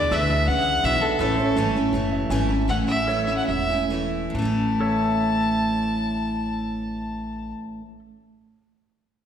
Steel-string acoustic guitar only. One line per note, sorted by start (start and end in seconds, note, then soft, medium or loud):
0.00 0.11 E3 medium
0.00 0.11 G#3 soft
0.00 0.12 D4 medium
0.00 0.12 E4 medium
0.11 0.30 E2 medium
0.11 0.30 B2 medium
0.11 0.30 E3 medium
0.11 0.30 G#3 medium
0.11 0.29 D4 medium
0.11 0.28 E4 loud
0.29 0.47 E3 soft
0.29 0.48 G#3 soft
0.29 0.48 D4 soft
0.29 0.47 E4 medium
0.48 0.85 E3 medium
0.48 0.84 G#3 medium
0.48 0.85 D4 medium
0.48 0.86 E4 medium
0.84 1.02 E2 medium
0.84 1.02 B2 medium
0.84 1.03 E3 medium
0.84 1.03 G#3 medium
0.84 1.02 D4 medium
0.84 1.00 E4 loud
1.02 1.19 E3 soft
1.02 1.20 G#3 medium
1.02 1.20 D4 medium
1.02 1.20 E4 medium
1.19 1.38 A2 medium
1.19 1.38 E3 medium
1.19 1.38 A3 medium
1.19 1.38 C#4 medium
1.19 1.37 E4 medium
1.38 1.57 A3 medium
1.38 1.57 C#4 medium
1.38 1.56 E4 medium
1.57 1.75 A2 medium
1.57 1.75 E3 medium
1.57 1.75 A3 medium
1.57 1.75 C#4 loud
1.57 1.74 E4 medium
1.75 1.93 A3 medium
1.75 1.94 C#4 medium
1.75 1.93 E4 medium
1.93 2.30 E3 medium
1.93 2.30 A3 medium
1.93 2.31 C#4 medium
1.93 2.31 E4 medium
2.30 2.49 A2 medium
2.30 2.49 E3 medium
2.30 2.50 A3 loud
2.30 2.49 C#4 loud
2.30 2.47 E4 loud
2.49 2.68 A3 soft
2.49 2.69 C#4 medium
2.49 2.68 E4 medium
2.68 2.88 A2 medium
2.68 2.88 E3 medium
2.68 2.88 A3 medium
2.68 2.88 C#4 medium
2.68 2.86 E4 medium
2.87 3.08 A3 soft
2.87 3.08 C#4 soft
2.87 3.07 E4 medium
3.08 3.28 E3 medium
3.08 3.28 A3 medium
3.08 3.28 C#4 medium
3.08 3.26 E4 medium
3.27 3.71 A3 soft
3.27 3.70 C#4 medium
3.27 3.68 E4 medium
3.69 3.90 A3 soft
3.69 3.91 C#4 medium
3.69 3.90 E4 medium
3.90 4.34 E3 medium
3.90 4.35 A3 medium
3.90 4.35 C#4 medium
3.90 4.36 E4 medium
4.30 7.80 A2 medium
4.35 7.85 E3 medium
4.35 7.89 A3 medium
4.42 7.92 C#4 medium
4.42 7.95 E4 medium